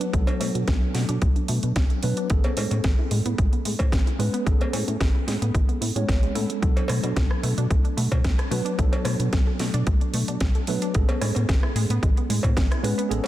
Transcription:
Already playing: F#3 B3 D4 B4
0.01 D4, closed hi-hat
0.12 B1 F#3 A3 B3 D4 A4, kick, closed hi-hat
0.27 D4, closed hi-hat, cowbell
0.40 B2 A3, open hi-hat, cowbell
0.55 B2 F#4, closed hi-hat
0.67 B1 A3, kick, snare, closed hi-hat
0.82 A4
0.94 B2 A3, snare, open hi-hat
1.09 B2 D4, closed hi-hat
1.22 B1 A3, kick, closed hi-hat
1.36 D4, closed hi-hat
1.48 B2 A3, open hi-hat
1.63 B2 F#4, closed hi-hat
1.76 B1 A3, kick, snare, closed hi-hat
1.90 A4, closed hi-hat
2.03 B2 F#3 A3 B3 D4 B4, open hi-hat
2.17 D4, closed hi-hat
2.30 A1 G#3 B3 C#4 G#4 A4, kick, closed hi-hat
2.44 B3, closed hi-hat, cowbell
2.57 A2 G#3, open hi-hat, cowbell
2.71 A2 C#4, closed hi-hat, cowbell
2.84 A1 G#3, kick, snare, closed hi-hat
2.99 E4
3.11 A2 G#3, open hi-hat
3.25 A2 B3, closed hi-hat
3.38 A1 G#3, kick, closed hi-hat
3.53 B3, closed hi-hat
3.65 A2 G#3, open hi-hat
3.79 A2 C#4, kick, closed hi-hat, cowbell
3.92 A1 G#3, kick, snare, closed hi-hat
4.07 E4, closed hi-hat
4.19 A2 G#3 B3 C#4 B4, open hi-hat
4.34 B3, closed hi-hat
4.45 A1 G#3 B3 C#4 G#4 A4, kick, closed hi-hat
4.61 B3, closed hi-hat, cowbell
4.73 A2 G#3, open hi-hat, cowbell
4.88 A2 C#4, closed hi-hat
5.00 A1 G#3, kick, snare, closed hi-hat
5.15 E4
5.27 A2 G#3, snare, open hi-hat
5.42 A2 B3, closed hi-hat
5.54 A1 G#3, kick, closed hi-hat
5.69 B3, closed hi-hat
5.81 A2 B3, open hi-hat
5.95 A2 G#3 B3 C#4 C#5, closed hi-hat
6.09 A1 B3, kick, snare, closed hi-hat
6.23 G#3, closed hi-hat
6.35 A2 G#3 B3 C#4 E4 A4, open hi-hat
6.50 G#3, closed hi-hat
6.61 B1 F#3 A3 B3 D4 A4, kick, closed hi-hat
6.77 D4, closed hi-hat, cowbell
6.88 B2 A3, cross-stick, open hi-hat, cowbell
7.03 B2 D4, closed hi-hat, cowbell
7.16 B1 A3, kick, snare, closed hi-hat
7.30 A4, cross-stick
7.43 B2 A3, open hi-hat
7.58 B2 D4, closed hi-hat
7.71 B1 A3, kick, closed hi-hat
7.85 D4, closed hi-hat
7.97 B2 A3, open hi-hat
8.12 B2 D4, kick, closed hi-hat, cowbell
8.24 B1 A3, kick, snare, closed hi-hat
8.38 A4, cross-stick, closed hi-hat
8.51 B2 F#3 A3 B3 D4 B4, open hi-hat
8.65 D4, closed hi-hat
8.78 B1 F#3 A3 B3 D4 A4, kick, closed hi-hat
8.93 D4, closed hi-hat, cowbell
9.05 B2 A3, cross-stick, open hi-hat, cowbell
9.19 B2 D4, closed hi-hat
9.33 B1 A3, kick, snare, closed hi-hat
9.47 A4
9.59 B2 A3, snare, open hi-hat
9.74 B2 D4, closed hi-hat
9.87 B1 A3, kick, closed hi-hat
10.01 D4, closed hi-hat
10.13 B2 A3, open hi-hat
10.28 B2 D4, closed hi-hat
10.40 B1 A3, kick, snare, closed hi-hat
10.55 A4, closed hi-hat
10.67 B2 F#3 A3 B3 D4 B4, open hi-hat
10.82 D4, closed hi-hat
10.94 A1 G#3 B3 C#4 G#4 A4, kick, closed hi-hat
11.09 B3, closed hi-hat, cowbell
11.21 A2 G#3, cross-stick, open hi-hat, cowbell
11.35 A2 B3, closed hi-hat, cowbell
11.49 A1 G#3, kick, snare, closed hi-hat
11.63 E4, cross-stick
11.75 A2 G#3, open hi-hat
11.89 A2 B3, closed hi-hat
12.03 A1 G#3, kick, closed hi-hat
12.17 B3, closed hi-hat
12.29 A2 G#3, open hi-hat
12.43 A2 B3, kick, closed hi-hat, cowbell
12.57 A1 G#3, kick, snare, closed hi-hat
12.71 E4, cross-stick, closed hi-hat
12.83 A2 G#3 B3 C#4 B4, open hi-hat
12.98 B3, closed hi-hat
13.09 A1 G#3 B3 C#4 G#4 A4, closed hi-hat
13.24 cowbell

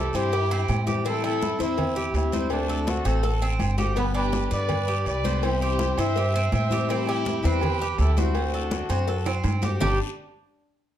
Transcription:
Already playing: E3 G3 G4
0.00 C4 E4 A4
0.13 G2 E3 G3 C4 E4 G4 C5, low agogo, short guiro
0.32 G4, muted steel-string acoustic guitar stroke, cowbell, high conga, long guiro
0.51 C4, high conga, low agogo
0.68 A2, cowbell, high conga, low timbale, low agogo, short guiro
0.86 E3 G3 C4 E4 G4, cowbell, high conga, short guiro
1.05 E3 G3 C4 E4 A4, cowbell, high conga, low agogo, long guiro
1.24 E4 A4, high conga, low agogo
1.41 E3 G3 C4 E4, cowbell, high conga, short guiro
1.59 E2 G3 C4 E4 C5, short guiro
1.63 E4
1.78 muted steel-string acoustic guitar stroke, cowbell, high conga, low conga, low agogo, long guiro
1.96 G4, high conga
2.14 D2 C4 E4, cowbell, high conga, low timbale, low agogo, short guiro
2.32 G3 C4 E4 C5, cowbell, high conga, short guiro
2.50 D3 A3 C4 D4 F#4, cowbell, low agogo, long guiro
2.68 A4, high conga
2.87 D3 A3 C4 D4 F#4, cowbell, high conga, low agogo, short guiro
3.04 A1 A3 C4 F#4 A4 C5, low agogo, short guiro
3.23 A4, muted steel-string acoustic guitar stroke, cowbell, high conga, long guiro
3.41 C4, high conga, low agogo
3.59 G1, cowbell, high conga, low agogo, short guiro
3.78 A3 C4 F#4 G4, cowbell, high conga, short guiro
3.96 B2 D3 G3 B3 G4 B4, cowbell, high conga, low agogo, long guiro
4.14 D4 G4 B4, high conga, low agogo
4.32 D3 G3 B3 G4, cowbell, high conga, short guiro
4.51 G2 D3 G3 B3 G4 B4 D5, short guiro
4.69 muted steel-string acoustic guitar stroke, cowbell, high conga, low conga, low agogo, long guiro
4.87 G4, high conga
5.05 C2 B4 D5, cowbell, high conga, low agogo, short guiro
5.24 D3 G3 B3 G4 C5, cowbell, high conga, short guiro
5.42 C3 E3 G3 C4 E4 G4 C5, cowbell, high conga, low agogo, long guiro
5.60 G4 C5, high conga
5.79 E3 G3 C4 E4, cowbell, high conga, low agogo, short guiro
5.97 G2 E3 G3 C4 E4 C5 E5, low agogo, short guiro
6.16 G4, muted steel-string acoustic guitar stroke, cowbell, high conga, long guiro
6.34 C4, high conga, low agogo
6.52 A2 C5 E5, cowbell, high conga, low timbale, low agogo, short guiro
6.70 E3 G3 C4 E4 G4, cowbell, high conga, short guiro
6.89 E3 G3 C4 E4 G4, cowbell, high conga, low agogo, long guiro
7.07 E4 G4, high conga, low agogo
7.25 E3 G3 C4 E4, cowbell, high conga, short guiro
7.43 E2 G3 C4 E4 G4 B4, short guiro
7.61 muted steel-string acoustic guitar stroke, cowbell, high conga, low conga, low agogo, long guiro
7.81 G4, high conga
7.98 D2 E4 A4, cowbell, high conga, low timbale, low agogo, short guiro
8.17 G3 C4 D4 E4 F#4 C5, cowbell, high conga, short guiro
8.35 D3 A3 C4 F#4, cowbell, high conga, low agogo, long guiro
8.54 A4, high conga
8.71 D3 A3 C4 F#4, cowbell, high conga, low agogo, short guiro
8.89 F#2 A3 C4 F#4 C5, low agogo, short guiro
9.08 A4, muted steel-string acoustic guitar stroke, cowbell, high conga, long guiro
9.26 C4, high conga, high timbale, low agogo
9.44 G2, cowbell, high conga, high timbale, low agogo, short guiro
9.62 A3 C4 F#4 G4, cowbell, high conga, low timbale, short guiro
9.80 G1 G2 B2 D3 G3 B3 D4 G4, low bongo, low conga, low timbale, long guiro

